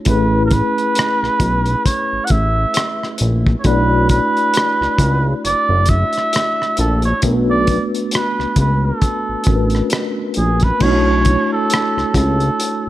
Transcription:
0.05 analog synth bass A1, tine electric piano A3 C4 E4 G#4 B4, muted trumpet B4, kick, closed hi-hat
0.13 tine electric piano C#4
0.46 muted trumpet A#4
0.51 muted trumpet B4, kick, closed hi-hat
0.78 closed hi-hat
0.95 cross-stick, closed hi-hat
1.22 analog synth bass B1, cross-stick
1.40 analog synth bass B1, kick, closed hi-hat
1.66 closed hi-hat
1.86 muted trumpet C#5, kick, closed hi-hat
2.13 analog synth bass A1
2.25 muted trumpet F#5, closed hi-hat
2.30 analog synth bass A1, muted trumpet E5, kick
2.74 cross-stick, closed hi-hat
3.03 cross-stick
3.18 analog synth bass A#1, closed hi-hat
3.47 kick
3.60 muted trumpet C#5
3.64 analog synth bass B1, tine electric piano A3 D4 E4 F#4 D5, muted trumpet B4, kick, closed hi-hat
4.09 muted trumpet B4, kick, closed hi-hat
4.37 closed hi-hat
4.54 cross-stick, closed hi-hat
4.81 analog synth bass C#2, cross-stick
4.99 analog synth bass C#2, kick, cross-stick, closed hi-hat
5.45 analog synth bass F#1, muted trumpet D5, closed hi-hat
5.69 analog synth bass F#1
5.86 muted trumpet E5, kick, closed hi-hat
6.13 closed hi-hat
6.18 cross-stick
6.33 cross-stick, closed hi-hat
6.62 cross-stick
6.77 analog synth bass A#1, muted trumpet A4, closed hi-hat
7.02 muted trumpet C#5, closed hi-hat
7.22 analog synth bass B1, tine electric piano A3 B3 D4 F#4 A#4, kick, closed hi-hat
7.32 tine electric piano B4
7.50 muted trumpet D5
7.67 kick, closed hi-hat
7.95 closed hi-hat
8.11 muted trumpet B4, cross-stick, closed hi-hat
8.39 analog synth bass C#2, cross-stick
8.56 analog synth bass C#2, kick, closed hi-hat
8.60 muted trumpet B4
8.85 muted trumpet A4
9.02 kick, closed hi-hat
9.29 analog synth bass A1
9.44 analog synth bass A1, tine electric piano A3 C#4, kick, closed hi-hat
9.48 tine electric piano D4 F#4 A#4
9.55 tine electric piano B4
9.70 closed hi-hat
9.75 cross-stick
9.90 cross-stick, closed hi-hat
10.34 analog synth bass A#1, muted trumpet G#4, closed hi-hat
10.60 muted trumpet B4, kick, closed hi-hat
10.80 analog synth bass B1, tine electric piano A3 D4 E4 F#4 C#5, muted trumpet C#5, kick, crash
11.25 kick, closed hi-hat
11.53 muted trumpet A4
11.70 cross-stick, closed hi-hat
11.97 analog synth bass C#2, cross-stick
12.14 analog synth bass C#2, muted trumpet A4, kick, cross-stick, closed hi-hat
12.40 closed hi-hat
12.60 closed hi-hat

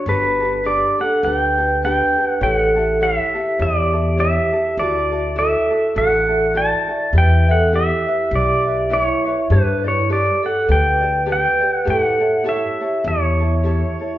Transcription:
Already playing: pedal steel guitar C#5
0.06 upright bass G1, ukulele D4 G4 A4 B4, vibraphone D4, pedal steel guitar B4
0.40 ukulele D4 G4 A4
0.64 ukulele D4 G4 A4 B4, vibraphone G4, pedal steel guitar D5
0.99 ukulele D4 G4 A4, vibraphone A4, pedal steel guitar F#5
1.23 upright bass D2, ukulele D4 G4 A4 B4, vibraphone B4, pedal steel guitar F#5
1.36 pedal steel guitar G5
1.58 ukulele D4 G4 A4
1.82 ukulele D4 G4 A4 B4, vibraphone B4, pedal steel guitar G5
2.18 ukulele D4 G4 A4
2.28 pedal steel guitar F#5
2.41 upright bass A1, ukulele E4 G4 A4 C#5, vibraphone A4, pedal steel guitar G5
2.54 pedal steel guitar F#5
2.76 ukulele E4 G4 A4
3.00 ukulele E4 G4 A4 C#5, vibraphone G4, pedal steel guitar E5
3.34 ukulele E4 G4 A4
3.58 upright bass E2, ukulele E4 G4 A4 C#5, vibraphone G4, pedal steel guitar D5
3.93 ukulele E4 G4 A4
4.17 ukulele E4 G4 A4 C#5, vibraphone G4, pedal steel guitar E5
4.53 ukulele E4 G4 A4
4.77 upright bass D2, ukulele E4 F#4 A4 D5, vibraphone F#4, pedal steel guitar D5
5.12 ukulele E4 F#4 A4
5.35 ukulele E4 F#4 A4 D5, vibraphone A4, pedal steel guitar E5
5.70 ukulele E4 F#4 A4
5.94 upright bass A1, ukulele E4 F#4 A4 D5, vibraphone A4, pedal steel guitar F#5
6.28 ukulele E4 F#4 A4
6.54 ukulele E4 F#4 A4 D5, vibraphone D5, pedal steel guitar A5
6.88 ukulele E4 F#4 A4
7.13 upright bass E2, ukulele E4 G4 B4 E5, vibraphone B4
7.18 pedal steel guitar G5
7.47 ukulele E4 B4 E5, vibraphone A4
7.51 pedal steel guitar F#5
7.72 ukulele E4 G4 B4 E5, pedal steel guitar E5
8.07 ukulele E4 B4 E5
8.31 upright bass B1, ukulele E4 G4 B4 E5, vibraphone G4
8.36 pedal steel guitar D5
8.66 ukulele E4 B4 E5
8.89 ukulele E4 G4 B4 E5
8.93 pedal steel guitar C#5
9.25 ukulele E4 B4 E5
9.50 upright bass G2, vibraphone D4, ukulele G4 A4 B4 D5, pedal steel guitar B4
9.84 vibraphone E4, ukulele G4 A4 D5
9.88 pedal steel guitar C#5
10.09 ukulele G4 A4 B4 D5, vibraphone G4, pedal steel guitar D5
10.43 ukulele G4 A4 D5, vibraphone A4, pedal steel guitar F#5
10.67 upright bass D2, ukulele G4 A4 B4 D5, vibraphone B4
10.72 pedal steel guitar G5
11.01 ukulele G4 A4 D5
11.26 ukulele G4 A4 B4 D5, vibraphone B4
11.32 pedal steel guitar G5
11.61 ukulele G4 A4 D5
11.74 pedal steel guitar F#5
11.85 upright bass A2, ukulele E4 G4 A4 C#5
11.90 vibraphone A4, pedal steel guitar F#5
12.19 ukulele E4 A4 C#5
12.44 ukulele E4 G4 A4 C#5, vibraphone G4
12.49 pedal steel guitar E5
12.80 ukulele E4 A4 C#5
13.04 upright bass E2, ukulele E4 G4 A4 C#5, vibraphone E4, pedal steel guitar C#5
13.39 ukulele E4 A4 C#5
13.63 ukulele E4 G4 A4 C#5
14.00 ukulele E4 A4 C#5

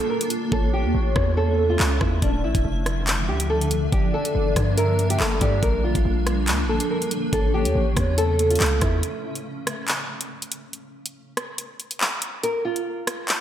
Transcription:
Already playing: ambient pad A#3 D4 F4
0.10 nylon-string guitar A#4
0.21 closed hi-hat
0.30 closed hi-hat
0.52 808-style bass A1, ambient pad A3 C#4 E5, nylon-string guitar A4, soft synth lead C#5, kick
0.73 nylon-string guitar G4
0.84 808-style bass E2
0.95 808-style bass A1
1.16 808-style bass E2, kick, cross-stick
1.37 nylon-string guitar A4
1.58 soft synth lead A4
1.70 nylon-string guitar F4
1.80 808-style bass C#2, clap
2.01 808-style bass E2, nylon-string guitar E4, kick, cross-stick
2.22 808-style bass D1, ambient pad D3 F3 D4, nylon-string guitar D4, kick, closed hi-hat
2.44 808-style bass A1, nylon-string guitar E4
2.55 808-style bass D1, kick, closed hi-hat
2.65 808-style bass F1
2.86 cross-stick, closed hi-hat
3.07 clap, closed hi-hat
3.29 808-style bass D2, nylon-string guitar G4
3.40 closed hi-hat
3.50 nylon-string guitar A4
3.61 closed hi-hat
3.71 closed hi-hat
3.92 808-style bass G1, ambient pad G3 A#3 A5, nylon-string guitar G4, soft synth lead D5, kick, closed hi-hat
4.14 nylon-string guitar A4
4.25 closed hi-hat
4.35 808-style bass G1
4.56 808-style bass G2, kick, cross-stick, closed hi-hat
4.77 nylon-string guitar A#4, soft synth lead E5, closed hi-hat
4.99 closed hi-hat
5.10 nylon-string guitar G4, closed hi-hat
5.20 808-style bass G1, nylon-string guitar A4, clap
5.41 808-style bass G2, nylon-string guitar G4, soft synth lead D5, kick, closed hi-hat
5.63 808-style bass A#1, ambient pad F3 A#3, nylon-string guitar A#4, kick, closed hi-hat
5.84 nylon-string guitar F4
5.95 808-style bass A#1, kick, closed hi-hat
6.05 808-style bass A#1
6.27 cross-stick, closed hi-hat
6.48 808-style bass C#2, clap, closed hi-hat
6.64 808-style bass A#1
6.69 nylon-string guitar A4
6.80 closed hi-hat
6.91 nylon-string guitar A#4
7.02 closed hi-hat
7.11 closed hi-hat
7.33 808-style bass A1, ambient pad C#3 A3 C#4, nylon-string guitar A4, soft synth lead C#5, kick, closed hi-hat
7.54 nylon-string guitar G4
7.65 808-style bass E2, closed hi-hat
7.75 808-style bass A1
7.97 808-style bass E2, kick, cross-stick, closed hi-hat
8.18 nylon-string guitar A4, closed hi-hat
8.39 soft synth lead A4, closed hi-hat
8.50 nylon-string guitar F4, closed hi-hat
8.55 closed hi-hat
8.60 808-style bass C#2, clap, closed hi-hat
8.66 closed hi-hat
8.81 808-style bass E2, nylon-string guitar E4, kick, cross-stick, closed hi-hat
9.03 closed hi-hat
9.35 closed hi-hat
9.67 cross-stick, closed hi-hat
9.88 clap, closed hi-hat
10.21 closed hi-hat
10.42 closed hi-hat
10.52 closed hi-hat
10.73 closed hi-hat
11.06 closed hi-hat
11.37 cross-stick, closed hi-hat
11.58 closed hi-hat
11.80 closed hi-hat
11.91 closed hi-hat
12.01 clap
12.22 closed hi-hat
12.43 nylon-string guitar A#4, closed hi-hat
12.65 nylon-string guitar F4
12.76 closed hi-hat
13.07 cross-stick, closed hi-hat
13.28 clap, closed hi-hat

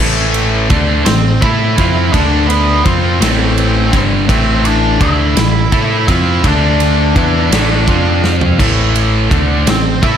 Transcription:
Already playing: overdriven electric guitar A2 E3
0.00 picked electric bass A1, overdriven electric guitar A3
0.34 ride
0.70 picked electric bass D2, overdriven electric guitar D3 A3 D4, kick, ride
1.05 picked electric bass A1, overdriven electric guitar A2 E3, lead electric guitar C4 C5, snare, ride
1.41 picked electric bass A2, overdriven electric guitar A3 E4 A4, lead electric guitar E4 E5, kick, ride
1.76 picked electric bass F2, overdriven electric guitar F3 C4 F4, kick, ride
2.12 picked electric bass D2, overdriven electric guitar D3 A3 D4, lead electric guitar D4 D5, kick, ride
2.48 lead electric guitar B3 B4, ride
2.84 picked electric bass F2, overdriven electric guitar F3 C4 F4, lead electric guitar C4 C5, kick, ride
3.20 picked electric bass A1, overdriven electric guitar A2 E3 A3, lead electric guitar C4 C5, snare, ride
3.58 ride
3.91 picked electric bass G1, overdriven electric guitar G2 D3 G3, kick, ride
4.28 picked electric bass A1, overdriven electric guitar A2 E3 A3, lead electric guitar C4 C5, kick, ride
4.65 lead electric guitar D4 D5, ride
5.00 picked electric bass D2, overdriven electric guitar D3 A3 D4, lead electric guitar E4 E5, kick, ride
5.36 picked electric bass A1, overdriven electric guitar A2 E3, snare, ride
5.72 picked electric bass A2, overdriven electric guitar A3 E4 A4, kick, ride
6.08 picked electric bass F2, overdriven electric guitar F3 C4 F4, lead electric guitar E4 E5, kick, ride
6.43 picked electric bass D2, overdriven electric guitar D3 A3 D4, lead electric guitar D4, kick, ride
6.47 lead electric guitar D5
6.80 ride
7.16 picked electric bass E2, overdriven electric guitar E3 B3 E4, kick, ride
7.50 picked electric bass A1, overdriven electric guitar A2 E3 A3, snare, ride
7.87 picked electric bass F2, overdriven electric guitar F3 C4 F4, kick, ride
8.24 snare
8.41 floor tom
8.59 picked electric bass A1, overdriven electric guitar A2 E3 A3, kick, crash
8.96 ride
9.30 picked electric bass D2, overdriven electric guitar D3 A3 D4, kick, ride
9.65 picked electric bass A1, overdriven electric guitar A2 E3, lead electric guitar C4, snare, ride
9.70 lead electric guitar C5
10.02 picked electric bass A2, overdriven electric guitar A3 E4 A4, lead electric guitar E4 E5, kick, ride

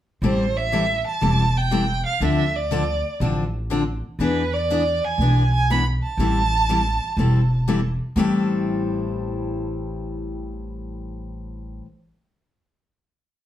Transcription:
0.22 upright bass A1, steel-string acoustic guitar E3 G3 C4 E4 A4, violin C5
0.57 violin E5
0.72 steel-string acoustic guitar E3 G3 C4 E4 A4
1.07 violin A5
1.21 upright bass E1, steel-string acoustic guitar E3 G3 C4 E4 A4
1.57 violin G5
1.71 steel-string acoustic guitar E3 G3 C4 E4 A4
2.06 violin F5
2.20 upright bass D2, steel-string acoustic guitar D3 F3 C4 D4 A4
2.25 violin E5
2.56 violin D5
2.71 steel-string acoustic guitar D3 F3 C4 D4 A4
3.20 upright bass A1, steel-string acoustic guitar D3 F3 C4 D4 A4
3.70 steel-string acoustic guitar D3 F3 C4 D4 A4
4.19 upright bass E2, steel-string acoustic guitar E3 B3 D4 G#4, violin B4
4.54 violin D5
4.70 steel-string acoustic guitar E3 B3 D4 G#4
5.05 violin G#5
5.18 upright bass B1, steel-string acoustic guitar E3 B3 D4 G#4
5.54 violin G#5
5.70 steel-string acoustic guitar E3 B3 D4 G#4, violin B5
6.03 violin A5
6.17 upright bass A1, steel-string acoustic guitar E3 G3 C4 E4 A4
6.69 steel-string acoustic guitar E3 G3 C4 E4 A4
7.17 upright bass E1, steel-string acoustic guitar E3 G3 C4 E4 A4
7.68 steel-string acoustic guitar E3 G3 C4 E4 A4
8.16 upright bass A1, steel-string acoustic guitar A2 E3 G3 C4 E4 A4

